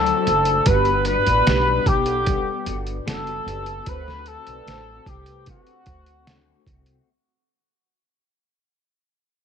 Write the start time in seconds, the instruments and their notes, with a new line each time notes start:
Already playing: upright bass D2, clean electric guitar D3 F#3 A3 D4 F#4 C5, trumpet A4
0.06 closed hi-hat
0.26 upright bass F#1, clean electric guitar A3 D4 F#4 C5, closed hi-hat
0.45 closed hi-hat
0.66 upright bass G1, clean electric guitar G3 B3 D4 F#4, vibraphone G4 B4, trumpet B4, kick, closed hi-hat
0.85 closed hi-hat
1.05 clean electric guitar D4 F#4, trumpet B4, closed hi-hat
1.10 clean electric guitar B3
1.27 upright bass A1, vibraphone B4 D5, closed hi-hat
1.47 upright bass B1, clean electric guitar G3 B3 D4 F#4, vibraphone G4 B4, snare, closed hi-hat
1.86 upright bass B1, clean electric guitar B3 D4, trumpet G4, kick, closed hi-hat
2.06 vibraphone A4 F#5, closed hi-hat
2.26 clean electric guitar G3 B3 D4, kick, closed hi-hat
2.65 upright bass G1, clean electric guitar B3 D4 F#4, vibraphone F#4 A4, closed hi-hat
2.87 closed hi-hat
3.06 upright bass F#1, clean electric guitar G3 B3 D4 F#4, trumpet A4, snare, closed hi-hat
3.27 closed hi-hat
3.45 upright bass F#1, clean electric guitar B3 D4 F#4, vibraphone G4 B4, closed hi-hat
3.66 closed hi-hat
3.86 upright bass D2, clean electric guitar D3 A3 C4 F#4, vibraphone A4 C5, trumpet B4, kick, closed hi-hat
4.08 snare
4.26 clean electric guitar A3 C4 F#4, trumpet A4, closed hi-hat
4.47 upright bass B1, vibraphone B4 D5, closed hi-hat
4.65 upright bass A1, clean electric guitar D3 A3 C4 F#4, vibraphone A4 C5, snare, closed hi-hat
5.06 upright bass C2, clean electric guitar A3 C4, trumpet G4, kick, closed hi-hat
5.26 vibraphone G4 B4, closed hi-hat
5.45 clean electric guitar D3 A3 C4 F#4, kick, closed hi-hat
5.50 trumpet F#4
5.67 closed hi-hat
5.86 upright bass D2, clean electric guitar A3 C4 F#4, vibraphone A4 C5, kick, closed hi-hat
6.06 closed hi-hat
6.27 clean electric guitar D3 A3 C4 F#4, snare, closed hi-hat
6.66 upright bass C2, clean electric guitar C4 F#4, kick, closed hi-hat
6.70 clean electric guitar A3
6.86 closed hi-hat